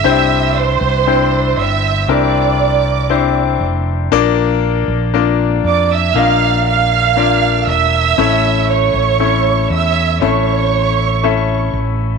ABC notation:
X:1
M:4/4
L:1/16
Q:1/4=59
K:Cmix
V:1 name="Violin section"
[ee']2 [cc']4 [ee']2 [dd']6 z2 | z6 [dd'] [ee'] [ff']2 [ff']4 [ee']2- | [ee']2 [^c^c']4 [ee']2 [cc']6 z2 |]
V:2 name="Grand piano"
[CDEGc]4 [CDEGc]4 [CDEGB]4 [CDEGc]4 | [B,DFBd]4 [B,DFBd]4 [B,DFB_ef]4 [B,DFBd]4 | [A,^CEA^c]4 [A,CEAc]4 [A,CEAe]4 [A,CEAe]4 |]
V:3 name="Grand piano" clef=bass
G,,6 z8 z2 | z16 | z16 |]
V:4 name="Fretless electric bass" clef=bass
C,,3 C,,3 G,,,2 C,,6 F,,,2 | B,,,3 B,,,3 F,,2 B,,,6 E,,,2 | A,,,3 A,,,3 E,,2 A,,,6 A,,,2 |]